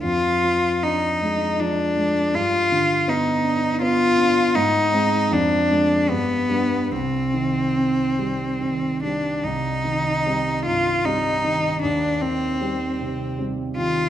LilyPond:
<<
  \new Staff \with { instrumentName = "Cello" } { \time 3/4 \key c \minor \tempo 4 = 77 f'4 ees'4 d'4 | f'4 ees'4 f'4 | ees'4 d'4 b4 | c'2~ c'8 d'8 |
ees'4. f'8 ees'4 | d'8 c'4. r8 f'8 | }
  \new Staff \with { instrumentName = "Grand piano" } { \clef bass \time 3/4 \key c \minor f,8 f8 d'8 aes8 f8 aes8 | g,8 d8 b8 d'8 b8 d'8 | aes,8 <aes c'>8 f,8 <aes d'>8 g,8 <g d'>8 | c,8 ees8 c'8 g8 ees8 g8 |
c,8 ees8 <g c'>8 g,8 <g c'>8 ees8 | ees,8 ees8 <g c'>8 c8 <g c'>8 ees8 | }
>>